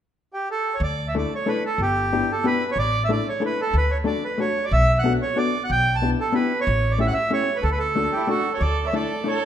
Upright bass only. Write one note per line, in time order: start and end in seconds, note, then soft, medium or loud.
0.80 1.23 D2 medium
1.78 2.21 G1 medium
2.76 3.18 A1 medium
3.73 4.16 D2 medium
4.71 5.14 B1 medium
5.70 6.12 B1 medium
6.67 7.09 A1 loud
7.63 8.06 D2 medium
8.61 9.03 D2 medium